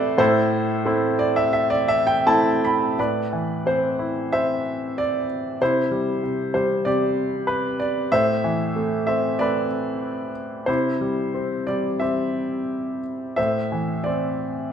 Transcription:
grand piano
Already playing: A2 A3 C4 A4 B4 C5 D5 E5
0.18 A2 E4 A4 C5
0.85 A3 C4 E4
1.19 D5
1.36 E5
1.53 E5
1.70 D5
1.88 E5
2.07 G5
2.26 A3 C4 E4 A5
2.65 B5
2.99 A2 B4 D5
3.33 E3
3.66 C4 C5
3.99 E4
4.32 C4 C5 E5
4.98 D5
5.61 C3 E4 C5
5.91 G3
6.23 C3
6.54 G3 C5
6.85 C3 G4 D5
7.47 B4
7.80 D5
8.12 A2 C5 E5
8.44 E3
8.76 A3
9.07 C4 E5
9.39 A3 B4 D5
10.66 C3 E4 C5
11.01 G3
11.34 C4
11.67 G3 D5
12.00 C4 G4 E5
13.36 A2 C5 E5
13.72 E3
14.04 C4 D5

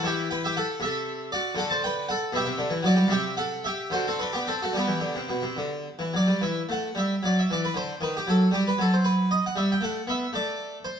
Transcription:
harpsichord
0.03 E3 G4 E5
0.31 B4 G5
0.44 G4 E5
0.57 A4 F#5
0.80 C3 E5
0.84 A4
1.32 F#4 D5
1.55 D3 F#5
1.59 A4
1.70 C5 A5
1.84 B4 G5
2.09 A4 F#5
2.33 B2 G4 E5
2.45 C3
2.58 D3
2.70 E3
2.83 F#3 F#4 D5
2.95 G3
3.08 C3 E5
3.12 G4
3.37 A4 F#5
3.64 G4 E5
3.90 D3 F#4 C5
4.07 C4 A4
4.19 D4 B4
4.33 B3 G4
4.47 C4 A4
4.62 A3 F#4
4.73 G3 G4
4.77 B3
4.87 E3
5.00 D3
5.15 C3
5.29 B2
5.42 C3
5.57 D3
5.99 E3
6.14 F#3 D5
6.27 G3
6.41 E3 E5
6.69 A3 F#5
6.95 G3 E5
7.23 F#3 D5
7.39 E5
7.51 E3 D5
7.65 B4
7.74 D3 C5
8.01 D#3 B4
8.17 G4
8.27 F#3 A4
8.51 G3 G4
8.67 B4
8.78 F#3 A4
8.94 C5
9.05 B4
9.31 D#5
9.46 F#5
9.56 G3 E5
9.72 G5
9.81 A3 F#5
10.07 B3 E5
10.33 A3 D5
10.85 C5

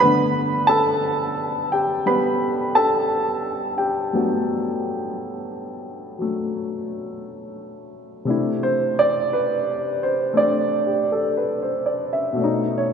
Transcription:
upright piano
0.00 G2 D3 A3 B3 B4 B5
0.67 A4 A5
1.72 G4 G5
2.06 G3 B3 B4 B5
2.75 A4 A5
3.78 G4 G5
4.13 G2 F#3 A3 B3
6.18 F#3 A3
8.25 C3 A3 D4
8.30 E4
8.63 C5
8.99 D5
9.33 B4
10.03 C5
10.33 A3 C4 D4 D5
10.87 G4
11.12 A4
11.37 B4
11.63 C5
11.86 D5
12.13 E5
12.33 B2 A3
12.41 C#4 D#4
12.78 C#5

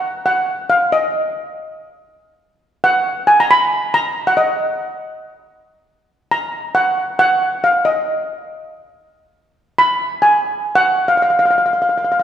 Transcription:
steel pan
Already playing: F#5
0.26 F#5
0.70 F5
0.92 D#5
2.84 F#5
3.27 G#5
3.40 A#5
3.51 B5
3.94 A#5
4.27 F#5
4.37 D#5
6.31 A#5
6.75 F#5
7.19 F#5
7.64 F5
7.85 D#5
9.78 B5
10.22 G#5
10.75 F#5
11.08 F5
11.17 F5
11.22 F5
11.30 F5
11.39 F5
11.46 F5
11.51 F5
11.58 F5
11.66 F5
11.73 F5
11.82 F5
11.89 F5
11.98 F5
12.05 F5
12.12 F5
12.20 F5

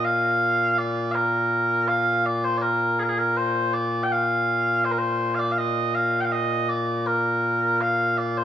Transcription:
bagpipes
Already playing: A#2
0.05 F5
0.78 D5
1.11 A#4 F5
1.88 F5
2.26 D5
2.44 C5
2.57 D5
2.62 A#4
2.99 G#4 A#4
3.09 G#4
3.18 A#4
3.37 C5
3.73 D5
4.03 G5
4.12 F5
4.85 C5
4.91 A#4
4.98 C5
5.35 F5
5.39 D5
5.52 F5
5.58 D#5
5.95 F5
6.21 F5 G5
6.32 D#5
6.69 D5
7.07 A#4
7.81 F5
8.18 D5
8.37 C5

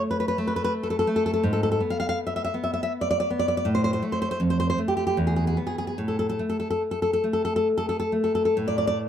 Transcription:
nylon-string guitar
Already playing: A3
0.11 B4
0.20 B4
0.28 B4
0.38 A3
0.47 B4
0.56 B4
0.64 B4
0.83 A4
0.90 A4
0.99 A4
1.07 A3
1.16 A4
1.26 A4
1.34 A4
1.43 G#2
1.53 A4
1.63 A4
1.72 A4
1.80 B3
1.90 F5
2.00 F5
2.09 F5
2.27 E5
2.36 E5
2.44 E5
2.54 B3
2.64 E5
2.74 E5
2.83 E5
3.01 D5
3.11 D5
3.20 D5
3.30 B3
3.39 D5
3.48 D5
3.57 D5
3.65 A2
3.75 C5
3.84 C5
3.93 C5
4.02 A3
4.12 C5
4.22 C5
4.31 C5
4.40 F2
4.50 C5
4.60 C5
4.70 C5
4.78 A3
4.88 G4
4.97 G4
5.07 G4
5.17 E2
5.27 G#4
5.36 G#4
5.47 G#4
5.57 B3
5.67 G#4
5.78 G#4
5.87 G#4
5.98 A2
6.08 A4
6.19 A4
6.29 A4
6.39 A3
6.49 A4
6.60 A4
6.70 A4
6.91 A4
7.02 A4
7.13 A4
7.24 A3
7.33 A4
7.45 A4
7.56 A4
7.78 A4
7.89 A4
8.00 A4
8.12 A3
8.24 A4
8.35 A4
8.45 A4
8.57 A2
8.68 D5
8.78 D5
8.87 D5

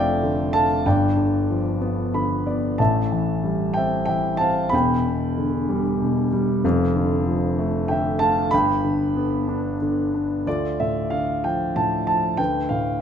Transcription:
grand piano
Already playing: F1 F2 D3 F3 A3 A4 D5 E5 F5 G5
0.23 D3
0.53 A3 F5 A5
0.86 G1 G2 D5 G5
1.17 D3
1.50 F3
1.81 B3
2.14 D3 B5
2.46 B3 D5
2.78 A1 A2 E5 A5
3.12 E3
3.44 G3
3.74 C4 E5 G5
4.05 E3 E5 G5
4.37 C4 F5 A5
4.69 E1 E2 B5
4.74 G5
5.06 B2
5.38 D3
5.69 G3
6.01 B2
6.33 G3
6.64 F1 F2
6.96 D3
7.27 F3
7.59 A3
7.88 D3 E5 G5
8.19 A3 F5 A5
8.51 G1 G2 G5 B5
8.85 D3
9.16 B3
9.48 D4
9.82 D3
10.14 D4
10.47 D2 F4 A4 D5
10.80 A2 E5
11.10 D3 F5
11.44 F3 G5
11.76 A2 A5
12.07 F3 A5
12.37 D2 B4 G5
12.69 A2 F5

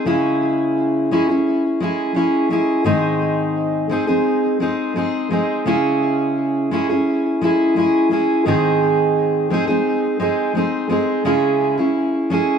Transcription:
steel-string acoustic guitar
0.06 C#3 G#3 C#4 E4 G#4
1.11 G#3 C#4 E4 G#4
1.29 C#4 E4 G#4
1.80 G#3 C#4 E4 G#4
2.14 G#3 C#4 E4 G#4
2.50 G#3 C#4 E4 G#4
2.84 G#2 D#3 G#3 C4 D#4 G#4
3.89 G#3 C4 D#4 G#4
4.07 G#3 C4 D#4 G#4
4.60 G#3 C4 D#4 G#4
4.96 G#3 C4 D#4 G#4
5.31 G#3 C4 D#4 G#4
5.66 C#3 G#3 C#4 E4 G#4
6.71 G#3 C#4 E4 G#4
6.89 C#4 E4 G#4
7.41 G#3 C#4 E4 G#4
7.76 G#3 C#4 E4 G#4
8.11 G#3 C#4 E4 G#4
8.46 G#2 D#3 G#3 C4 D#4 G#4
9.50 G#3 C4 D#4 G#4
9.67 G#3 C4 D#4 G#4
10.20 G#3 C4 D#4 G#4
10.55 G#3 C4 D#4 G#4
10.89 G#3 C4 D#4 G#4
11.25 C#3 G#3 C#4 E4 G#4
11.78 C#4 E4 G#4
12.30 G#3 C#4 E4 G#4

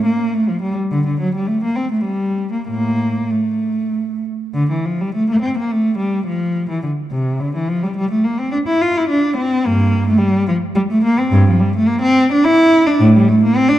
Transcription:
cello
0.05 A#3
0.34 A3
0.49 F3
0.62 G3
0.91 D3
1.06 D3
1.20 F#3
1.35 G3
1.47 A3
1.64 A#3
1.75 C4
1.92 A3
2.05 G3
2.52 A#3
2.68 A2 A#3
3.30 A3
4.54 D3
4.71 E3
4.85 F3
5.01 G3
5.14 A3
5.30 A#3
5.42 C4
5.58 A#3
5.72 A3
5.98 G3
6.27 F3
6.69 E3
6.83 D3
7.11 C3
7.40 D3
7.56 E3
7.68 F3
7.83 G3
7.97 G3
8.11 A3
8.24 A#3
8.39 C4
8.52 D4
8.67 E4
8.81 F4
8.97 E4
9.10 D4
9.37 C4
9.66 G2 A#3
10.07 A3
10.18 G3
10.48 F3
10.76 G3
10.91 A3
11.04 A#3
11.19 C4
11.31 G2
11.47 F3
11.60 G3
11.76 A3
11.87 A#3
12.02 C4
12.32 D4
12.45 E4
12.86 D4
13.00 A2
13.15 G3
13.28 A3
13.43 A#3
13.56 C4
13.68 D4

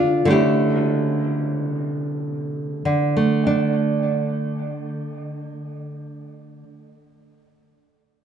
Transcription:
nylon-string guitar
Already playing: D3 A3 D4 F4
0.25 D3 A3
0.29 C#4 E4 G4
2.85 D3
3.17 A3
3.47 D4

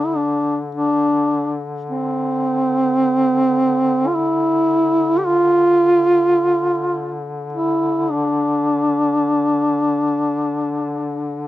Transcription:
duduk
Already playing: D3
0.06 E4
0.16 D4
0.75 D4
1.90 C4
4.07 F4
4.14 E4
5.18 G4
5.26 F4
7.53 E4
8.11 D4

